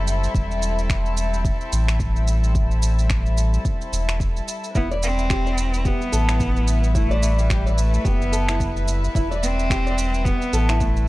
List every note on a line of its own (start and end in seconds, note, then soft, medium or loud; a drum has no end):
0.00 0.28 F#1 medium
0.00 4.71 G3 medium
0.00 4.71 C4 medium
0.00 4.71 E4 medium
0.00 4.71 A4 medium
0.00 4.71 E5 medium
0.07 shaker medium
0.24 shaker soft
0.35 1.51 E1 medium
0.35 kick loud
0.35 shaker soft
0.51 shaker soft
0.62 shaker medium
0.79 shaker soft
0.90 finger snap medium
0.90 kick loud
0.90 shaker soft
1.06 shaker soft
1.17 shaker medium
1.34 shaker soft
1.45 kick medium
1.45 shaker soft
1.61 shaker soft
1.72 3.58 A1 loud
1.72 shaker medium
1.89 finger snap medium
1.89 shaker soft
2.00 kick medium
2.00 shaker soft
2.16 shaker soft
2.28 shaker medium
2.44 shaker soft
2.55 kick medium
2.55 shaker soft
2.71 shaker soft
2.82 shaker medium
2.99 shaker soft
3.10 finger snap medium
3.10 kick medium
3.10 shaker soft
3.26 shaker soft
3.37 shaker medium
3.54 shaker soft
3.65 kick medium
3.65 shaker soft
3.81 shaker soft
3.92 4.41 E1 loud
3.92 shaker medium
4.09 finger snap medium
4.09 shaker soft
4.20 kick loud
4.20 shaker soft
4.37 shaker soft
4.48 shaker medium
4.64 shaker soft
4.74 5.92 E1 medium
4.74 11.08 G3 medium
4.74 4.88 B3 loud
4.74 11.08 E4 medium
4.74 4.90 E4 medium
4.74 11.08 B4 medium
4.74 11.08 E5 medium
4.74 kick loud
4.74 shaker soft
4.91 5.29 D5 medium
4.91 shaker soft
5.03 5.88 C4 loud
5.03 shaker medium
5.19 shaker soft
5.30 5.44 G4 medium
5.30 finger snap medium
5.30 kick loud
5.30 shaker soft
5.46 5.57 D5 medium
5.46 shaker soft
5.58 shaker medium
5.74 shaker soft
5.85 6.95 B3 loud
5.85 6.00 G4 medium
5.85 kick medium
5.85 shaker soft
6.02 shaker soft
6.12 7.98 A1 loud
6.12 6.27 A4 medium
6.12 shaker medium
6.28 6.82 E4 medium
6.28 finger snap medium
6.28 shaker soft
6.40 kick loud
6.40 shaker soft
6.56 shaker soft
6.68 shaker medium
6.84 shaker soft
6.95 7.41 A3 loud
6.95 7.10 E4 medium
6.95 kick loud
6.95 shaker soft
7.11 7.49 D5 loud
7.11 shaker soft
7.23 shaker medium
7.39 7.77 G3 medium
7.39 shaker soft
7.50 7.64 G4 medium
7.50 finger snap medium
7.50 kick loud
7.50 shaker soft
7.66 7.77 D5 medium
7.66 shaker soft
7.77 8.07 A3 medium
7.77 shaker medium
7.94 shaker soft
8.05 9.08 F#1 medium
8.05 8.88 B3 medium
8.05 8.20 G4 medium
8.05 kick loud
8.05 shaker soft
8.22 shaker soft
8.32 8.47 A4 medium
8.32 shaker medium
8.49 9.02 E4 medium
8.49 finger snap medium
8.49 shaker soft
8.60 kick loud
8.60 shaker soft
8.77 shaker soft
8.88 shaker medium
9.04 shaker soft
9.15 10.32 E1 medium
9.15 9.31 E4 medium
9.15 kick loud
9.15 shaker soft
9.31 9.69 D5 medium
9.31 shaker soft
9.42 10.26 C4 loud
9.42 shaker medium
9.59 shaker soft
9.70 9.85 G4 loud
9.70 finger snap medium
9.70 kick loud
9.70 shaker soft
9.87 9.97 D5 medium
9.87 shaker soft
9.98 shaker medium
10.14 shaker soft
10.24 10.81 B3 loud
10.24 10.41 G4 medium
10.24 kick loud
10.24 shaker soft
10.42 shaker soft
10.53 11.08 A1 loud
10.53 10.68 A4 medium
10.53 shaker medium
10.69 11.08 E4 medium
10.69 finger snap medium
10.69 shaker soft
10.80 11.08 A3 medium
10.80 kick loud
10.80 shaker soft
10.97 shaker soft